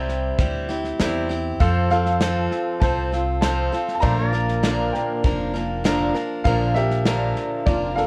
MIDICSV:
0, 0, Header, 1, 6, 480
1, 0, Start_track
1, 0, Key_signature, -1, "major"
1, 0, Tempo, 606673
1, 1269, Time_signature, 4, 2, 24, 8
1, 6383, End_track
2, 0, Start_track
2, 0, Title_t, "Upright piano"
2, 0, Program_c, 0, 0
2, 1264, Note_on_c, 0, 77, 82
2, 1267, Note_on_c, 0, 69, 58
2, 1491, Note_off_c, 0, 69, 0
2, 1498, Note_off_c, 0, 77, 0
2, 1510, Note_on_c, 0, 77, 103
2, 1518, Note_on_c, 0, 69, 67
2, 2201, Note_off_c, 0, 69, 0
2, 2216, Note_on_c, 0, 81, 91
2, 2233, Note_on_c, 0, 72, 72
2, 2251, Note_off_c, 0, 77, 0
2, 2679, Note_off_c, 0, 72, 0
2, 2686, Note_off_c, 0, 81, 0
2, 2698, Note_on_c, 0, 81, 89
2, 2717, Note_on_c, 0, 72, 74
2, 3108, Note_off_c, 0, 72, 0
2, 3110, Note_off_c, 0, 81, 0
2, 3122, Note_on_c, 0, 81, 80
2, 3166, Note_on_c, 0, 82, 97
2, 3182, Note_on_c, 0, 74, 76
2, 3183, Note_off_c, 0, 81, 0
2, 3873, Note_off_c, 0, 74, 0
2, 3897, Note_on_c, 0, 79, 81
2, 3911, Note_on_c, 0, 70, 61
2, 3919, Note_off_c, 0, 82, 0
2, 4831, Note_off_c, 0, 79, 0
2, 4838, Note_off_c, 0, 70, 0
2, 5099, Note_on_c, 0, 77, 109
2, 5118, Note_on_c, 0, 70, 82
2, 5336, Note_on_c, 0, 76, 106
2, 5337, Note_off_c, 0, 70, 0
2, 5351, Note_off_c, 0, 77, 0
2, 5353, Note_on_c, 0, 67, 81
2, 6032, Note_off_c, 0, 76, 0
2, 6040, Note_off_c, 0, 67, 0
2, 6060, Note_on_c, 0, 74, 89
2, 6077, Note_on_c, 0, 65, 77
2, 6294, Note_on_c, 0, 77, 95
2, 6297, Note_off_c, 0, 65, 0
2, 6310, Note_on_c, 0, 69, 78
2, 6312, Note_off_c, 0, 74, 0
2, 6383, Note_off_c, 0, 69, 0
2, 6383, Note_off_c, 0, 77, 0
2, 6383, End_track
3, 0, Start_track
3, 0, Title_t, "Pedal steel guitar"
3, 0, Program_c, 1, 26
3, 1273, Note_on_c, 1, 69, 68
3, 1281, Note_on_c, 1, 72, 70
3, 3171, Note_off_c, 1, 69, 0
3, 3175, Note_off_c, 1, 72, 0
3, 3189, Note_on_c, 1, 57, 72
3, 3201, Note_on_c, 1, 72, 71
3, 3348, Note_off_c, 1, 57, 0
3, 3348, Note_on_c, 1, 58, 72
3, 3399, Note_off_c, 1, 72, 0
3, 3399, Note_on_c, 1, 74, 71
3, 6383, Note_off_c, 1, 58, 0
3, 6383, Note_off_c, 1, 74, 0
3, 6383, End_track
4, 0, Start_track
4, 0, Title_t, "Steel-string acoustic guitar"
4, 0, Program_c, 2, 25
4, 0, Note_on_c, 2, 48, 80
4, 0, Note_on_c, 2, 55, 89
4, 0, Note_on_c, 2, 60, 91
4, 0, Note_on_c, 2, 64, 89
4, 0, Note_on_c, 2, 67, 83
4, 304, Note_off_c, 2, 55, 0
4, 309, Note_off_c, 2, 48, 0
4, 312, Note_off_c, 2, 64, 0
4, 313, Note_on_c, 2, 55, 75
4, 314, Note_off_c, 2, 60, 0
4, 314, Note_off_c, 2, 67, 0
4, 317, Note_on_c, 2, 60, 73
4, 322, Note_on_c, 2, 64, 74
4, 325, Note_on_c, 2, 67, 77
4, 535, Note_off_c, 2, 67, 0
4, 545, Note_off_c, 2, 64, 0
4, 545, Note_on_c, 2, 67, 60
4, 551, Note_off_c, 2, 55, 0
4, 551, Note_off_c, 2, 60, 0
4, 554, Note_on_c, 2, 64, 48
4, 560, Note_on_c, 2, 60, 45
4, 784, Note_off_c, 2, 60, 0
4, 787, Note_off_c, 2, 67, 0
4, 788, Note_off_c, 2, 64, 0
4, 789, Note_on_c, 2, 48, 82
4, 792, Note_on_c, 2, 55, 77
4, 794, Note_on_c, 2, 60, 90
4, 797, Note_on_c, 2, 64, 97
4, 801, Note_on_c, 2, 67, 86
4, 1011, Note_off_c, 2, 67, 0
4, 1021, Note_off_c, 2, 64, 0
4, 1021, Note_on_c, 2, 67, 56
4, 1026, Note_off_c, 2, 60, 0
4, 1029, Note_off_c, 2, 48, 0
4, 1031, Note_off_c, 2, 55, 0
4, 1031, Note_on_c, 2, 64, 52
4, 1036, Note_on_c, 2, 60, 45
4, 1260, Note_off_c, 2, 60, 0
4, 1264, Note_on_c, 2, 53, 72
4, 1265, Note_off_c, 2, 67, 0
4, 1269, Note_on_c, 2, 60, 75
4, 1270, Note_off_c, 2, 64, 0
4, 1274, Note_on_c, 2, 65, 79
4, 1275, Note_on_c, 2, 69, 82
4, 1496, Note_off_c, 2, 69, 0
4, 1505, Note_on_c, 2, 69, 55
4, 1506, Note_off_c, 2, 53, 0
4, 1506, Note_off_c, 2, 65, 0
4, 1509, Note_off_c, 2, 60, 0
4, 1515, Note_on_c, 2, 65, 48
4, 1520, Note_on_c, 2, 60, 46
4, 1744, Note_off_c, 2, 60, 0
4, 1746, Note_off_c, 2, 65, 0
4, 1747, Note_off_c, 2, 69, 0
4, 1747, Note_on_c, 2, 53, 79
4, 1753, Note_on_c, 2, 60, 88
4, 1755, Note_on_c, 2, 65, 81
4, 1757, Note_on_c, 2, 69, 86
4, 2223, Note_off_c, 2, 60, 0
4, 2224, Note_off_c, 2, 53, 0
4, 2228, Note_on_c, 2, 53, 65
4, 2231, Note_off_c, 2, 69, 0
4, 2232, Note_on_c, 2, 60, 69
4, 2236, Note_off_c, 2, 65, 0
4, 2239, Note_on_c, 2, 65, 66
4, 2240, Note_on_c, 2, 69, 63
4, 2459, Note_off_c, 2, 69, 0
4, 2468, Note_off_c, 2, 53, 0
4, 2468, Note_on_c, 2, 69, 48
4, 2469, Note_off_c, 2, 65, 0
4, 2470, Note_off_c, 2, 60, 0
4, 2478, Note_on_c, 2, 65, 43
4, 2483, Note_on_c, 2, 60, 42
4, 2699, Note_off_c, 2, 60, 0
4, 2704, Note_off_c, 2, 65, 0
4, 2704, Note_on_c, 2, 53, 75
4, 2708, Note_off_c, 2, 69, 0
4, 2708, Note_on_c, 2, 60, 80
4, 2714, Note_on_c, 2, 65, 84
4, 2717, Note_on_c, 2, 69, 83
4, 2936, Note_off_c, 2, 69, 0
4, 2944, Note_off_c, 2, 65, 0
4, 2946, Note_off_c, 2, 53, 0
4, 2946, Note_on_c, 2, 69, 52
4, 2948, Note_off_c, 2, 60, 0
4, 2953, Note_on_c, 2, 65, 53
4, 2959, Note_on_c, 2, 60, 41
4, 3177, Note_on_c, 2, 46, 81
4, 3180, Note_on_c, 2, 50, 76
4, 3181, Note_off_c, 2, 65, 0
4, 3182, Note_off_c, 2, 60, 0
4, 3182, Note_on_c, 2, 53, 71
4, 3184, Note_on_c, 2, 62, 80
4, 3185, Note_off_c, 2, 69, 0
4, 3185, Note_on_c, 2, 58, 76
4, 3188, Note_on_c, 2, 70, 77
4, 3414, Note_off_c, 2, 70, 0
4, 3420, Note_off_c, 2, 62, 0
4, 3423, Note_off_c, 2, 46, 0
4, 3423, Note_off_c, 2, 58, 0
4, 3423, Note_on_c, 2, 70, 59
4, 3424, Note_off_c, 2, 50, 0
4, 3425, Note_off_c, 2, 53, 0
4, 3430, Note_on_c, 2, 62, 48
4, 3432, Note_on_c, 2, 58, 49
4, 3438, Note_on_c, 2, 53, 45
4, 3656, Note_off_c, 2, 53, 0
4, 3657, Note_off_c, 2, 58, 0
4, 3658, Note_off_c, 2, 62, 0
4, 3660, Note_on_c, 2, 46, 74
4, 3663, Note_on_c, 2, 50, 80
4, 3665, Note_on_c, 2, 53, 77
4, 3666, Note_off_c, 2, 70, 0
4, 3667, Note_on_c, 2, 58, 87
4, 3668, Note_on_c, 2, 62, 88
4, 3674, Note_on_c, 2, 70, 88
4, 4134, Note_off_c, 2, 53, 0
4, 4138, Note_off_c, 2, 58, 0
4, 4144, Note_off_c, 2, 46, 0
4, 4144, Note_on_c, 2, 53, 58
4, 4146, Note_off_c, 2, 50, 0
4, 4146, Note_off_c, 2, 62, 0
4, 4148, Note_on_c, 2, 58, 61
4, 4149, Note_off_c, 2, 70, 0
4, 4155, Note_on_c, 2, 62, 67
4, 4158, Note_on_c, 2, 70, 71
4, 4371, Note_off_c, 2, 70, 0
4, 4380, Note_off_c, 2, 62, 0
4, 4381, Note_on_c, 2, 70, 52
4, 4384, Note_off_c, 2, 58, 0
4, 4386, Note_off_c, 2, 53, 0
4, 4389, Note_on_c, 2, 62, 49
4, 4394, Note_on_c, 2, 58, 43
4, 4397, Note_on_c, 2, 53, 43
4, 4621, Note_off_c, 2, 53, 0
4, 4622, Note_off_c, 2, 62, 0
4, 4622, Note_on_c, 2, 46, 90
4, 4624, Note_off_c, 2, 58, 0
4, 4625, Note_off_c, 2, 70, 0
4, 4626, Note_on_c, 2, 50, 99
4, 4630, Note_on_c, 2, 53, 96
4, 4631, Note_on_c, 2, 62, 95
4, 4633, Note_on_c, 2, 58, 96
4, 4633, Note_on_c, 2, 70, 103
4, 4851, Note_off_c, 2, 70, 0
4, 4859, Note_off_c, 2, 62, 0
4, 4860, Note_on_c, 2, 70, 61
4, 4864, Note_off_c, 2, 58, 0
4, 4865, Note_off_c, 2, 46, 0
4, 4868, Note_off_c, 2, 50, 0
4, 4869, Note_off_c, 2, 53, 0
4, 4869, Note_on_c, 2, 62, 60
4, 4873, Note_on_c, 2, 58, 48
4, 4877, Note_on_c, 2, 53, 44
4, 5104, Note_off_c, 2, 70, 0
4, 5105, Note_off_c, 2, 53, 0
4, 5107, Note_off_c, 2, 58, 0
4, 5108, Note_on_c, 2, 46, 78
4, 5109, Note_off_c, 2, 62, 0
4, 5111, Note_on_c, 2, 50, 75
4, 5114, Note_on_c, 2, 53, 82
4, 5116, Note_on_c, 2, 58, 84
4, 5119, Note_on_c, 2, 62, 81
4, 5119, Note_on_c, 2, 70, 91
4, 5338, Note_off_c, 2, 70, 0
4, 5343, Note_off_c, 2, 62, 0
4, 5347, Note_on_c, 2, 70, 58
4, 5348, Note_off_c, 2, 46, 0
4, 5349, Note_off_c, 2, 58, 0
4, 5350, Note_off_c, 2, 50, 0
4, 5352, Note_off_c, 2, 53, 0
4, 5352, Note_on_c, 2, 62, 47
4, 5359, Note_on_c, 2, 58, 47
4, 5361, Note_on_c, 2, 53, 46
4, 5581, Note_off_c, 2, 53, 0
4, 5585, Note_off_c, 2, 58, 0
4, 5587, Note_off_c, 2, 62, 0
4, 5588, Note_off_c, 2, 70, 0
4, 5589, Note_on_c, 2, 46, 80
4, 5590, Note_on_c, 2, 53, 84
4, 5593, Note_on_c, 2, 50, 82
4, 5594, Note_on_c, 2, 58, 82
4, 5597, Note_on_c, 2, 62, 88
4, 5598, Note_on_c, 2, 70, 92
4, 6055, Note_off_c, 2, 53, 0
4, 6064, Note_off_c, 2, 58, 0
4, 6065, Note_off_c, 2, 62, 0
4, 6065, Note_on_c, 2, 53, 61
4, 6070, Note_off_c, 2, 46, 0
4, 6071, Note_off_c, 2, 50, 0
4, 6072, Note_off_c, 2, 70, 0
4, 6073, Note_on_c, 2, 58, 66
4, 6075, Note_on_c, 2, 62, 69
4, 6081, Note_on_c, 2, 70, 68
4, 6298, Note_off_c, 2, 70, 0
4, 6302, Note_off_c, 2, 62, 0
4, 6307, Note_off_c, 2, 53, 0
4, 6307, Note_on_c, 2, 70, 46
4, 6308, Note_off_c, 2, 58, 0
4, 6312, Note_on_c, 2, 62, 43
4, 6317, Note_on_c, 2, 58, 43
4, 6321, Note_on_c, 2, 53, 42
4, 6383, Note_off_c, 2, 53, 0
4, 6383, Note_off_c, 2, 58, 0
4, 6383, Note_off_c, 2, 62, 0
4, 6383, Note_off_c, 2, 70, 0
4, 6383, End_track
5, 0, Start_track
5, 0, Title_t, "Upright bass"
5, 0, Program_c, 3, 32
5, 0, Note_on_c, 3, 36, 78
5, 237, Note_off_c, 3, 36, 0
5, 310, Note_on_c, 3, 38, 77
5, 717, Note_off_c, 3, 38, 0
5, 789, Note_on_c, 3, 40, 85
5, 1197, Note_off_c, 3, 40, 0
5, 1269, Note_on_c, 3, 41, 89
5, 1953, Note_off_c, 3, 41, 0
5, 2227, Note_on_c, 3, 36, 81
5, 2912, Note_off_c, 3, 36, 0
5, 3186, Note_on_c, 3, 34, 87
5, 3871, Note_off_c, 3, 34, 0
5, 4146, Note_on_c, 3, 29, 78
5, 4832, Note_off_c, 3, 29, 0
5, 5106, Note_on_c, 3, 34, 94
5, 5792, Note_off_c, 3, 34, 0
5, 6067, Note_on_c, 3, 29, 81
5, 6383, Note_off_c, 3, 29, 0
5, 6383, End_track
6, 0, Start_track
6, 0, Title_t, "Drums"
6, 69, Note_on_c, 9, 38, 35
6, 148, Note_off_c, 9, 38, 0
6, 307, Note_on_c, 9, 38, 34
6, 308, Note_on_c, 9, 36, 117
6, 386, Note_off_c, 9, 38, 0
6, 387, Note_off_c, 9, 36, 0
6, 549, Note_on_c, 9, 38, 32
6, 628, Note_off_c, 9, 38, 0
6, 667, Note_on_c, 9, 38, 31
6, 746, Note_off_c, 9, 38, 0
6, 788, Note_on_c, 9, 38, 109
6, 788, Note_on_c, 9, 44, 85
6, 867, Note_off_c, 9, 38, 0
6, 867, Note_off_c, 9, 44, 0
6, 1027, Note_on_c, 9, 38, 33
6, 1106, Note_off_c, 9, 38, 0
6, 1268, Note_on_c, 9, 36, 106
6, 1270, Note_on_c, 9, 38, 32
6, 1347, Note_off_c, 9, 36, 0
6, 1349, Note_off_c, 9, 38, 0
6, 1507, Note_on_c, 9, 38, 35
6, 1586, Note_off_c, 9, 38, 0
6, 1628, Note_on_c, 9, 38, 31
6, 1707, Note_off_c, 9, 38, 0
6, 1747, Note_on_c, 9, 38, 111
6, 1747, Note_on_c, 9, 44, 83
6, 1826, Note_off_c, 9, 38, 0
6, 1826, Note_off_c, 9, 44, 0
6, 1989, Note_on_c, 9, 38, 34
6, 2068, Note_off_c, 9, 38, 0
6, 2227, Note_on_c, 9, 36, 112
6, 2227, Note_on_c, 9, 38, 34
6, 2306, Note_off_c, 9, 36, 0
6, 2306, Note_off_c, 9, 38, 0
6, 2473, Note_on_c, 9, 38, 34
6, 2552, Note_off_c, 9, 38, 0
6, 2707, Note_on_c, 9, 38, 109
6, 2707, Note_on_c, 9, 44, 91
6, 2786, Note_off_c, 9, 38, 0
6, 2786, Note_off_c, 9, 44, 0
6, 2951, Note_on_c, 9, 38, 34
6, 3030, Note_off_c, 9, 38, 0
6, 3071, Note_on_c, 9, 38, 33
6, 3150, Note_off_c, 9, 38, 0
6, 3187, Note_on_c, 9, 36, 106
6, 3189, Note_on_c, 9, 38, 31
6, 3267, Note_off_c, 9, 36, 0
6, 3268, Note_off_c, 9, 38, 0
6, 3429, Note_on_c, 9, 38, 35
6, 3508, Note_off_c, 9, 38, 0
6, 3547, Note_on_c, 9, 38, 30
6, 3626, Note_off_c, 9, 38, 0
6, 3666, Note_on_c, 9, 38, 111
6, 3666, Note_on_c, 9, 44, 82
6, 3745, Note_off_c, 9, 38, 0
6, 3745, Note_off_c, 9, 44, 0
6, 3910, Note_on_c, 9, 38, 31
6, 3990, Note_off_c, 9, 38, 0
6, 4148, Note_on_c, 9, 36, 107
6, 4150, Note_on_c, 9, 38, 37
6, 4227, Note_off_c, 9, 36, 0
6, 4229, Note_off_c, 9, 38, 0
6, 4391, Note_on_c, 9, 38, 32
6, 4470, Note_off_c, 9, 38, 0
6, 4630, Note_on_c, 9, 38, 113
6, 4630, Note_on_c, 9, 44, 91
6, 4709, Note_off_c, 9, 38, 0
6, 4709, Note_off_c, 9, 44, 0
6, 4869, Note_on_c, 9, 38, 34
6, 4948, Note_off_c, 9, 38, 0
6, 5106, Note_on_c, 9, 36, 109
6, 5106, Note_on_c, 9, 38, 33
6, 5185, Note_off_c, 9, 38, 0
6, 5186, Note_off_c, 9, 36, 0
6, 5343, Note_on_c, 9, 38, 35
6, 5422, Note_off_c, 9, 38, 0
6, 5465, Note_on_c, 9, 38, 32
6, 5544, Note_off_c, 9, 38, 0
6, 5583, Note_on_c, 9, 38, 106
6, 5583, Note_on_c, 9, 44, 77
6, 5663, Note_off_c, 9, 38, 0
6, 5663, Note_off_c, 9, 44, 0
6, 5825, Note_on_c, 9, 38, 34
6, 5904, Note_off_c, 9, 38, 0
6, 6062, Note_on_c, 9, 38, 37
6, 6066, Note_on_c, 9, 36, 111
6, 6141, Note_off_c, 9, 38, 0
6, 6145, Note_off_c, 9, 36, 0
6, 6308, Note_on_c, 9, 38, 32
6, 6383, Note_off_c, 9, 38, 0
6, 6383, End_track
0, 0, End_of_file